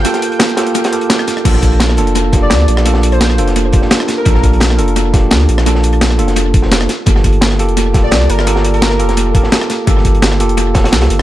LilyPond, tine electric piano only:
\new Staff \with { instrumentName = "Tine electric piano" } { \time 4/4 \key bes \major \tempo 4 = 171 <bes f' g' a'>4. <bes f' g' a'>4 <bes f' g' a'>4. | <bes d' f' a'>4. <bes d' f' a'>4 <bes d' f' g'>4. | <bes d' f' a'>4. <bes d' f' a'>4 <bes d' f' g'>4. | <bes d' f' a'>4. <bes d' f' a'>4 <bes d' f' g'>4. |
<bes d' f' a'>4. <bes d' f' a'>4 r16 <bes d' f' c''>8. r8 | <bes f' g' a'>4. <bes f' g' a'>4 <bes f' g' a'>4. | <bes f' g' a'>4. <bes f' g' a'>4 <bes f' g' a'>4. | <bes f' g' a'>4. <bes f' g' a'>4 <bes f' g' a'>4. | }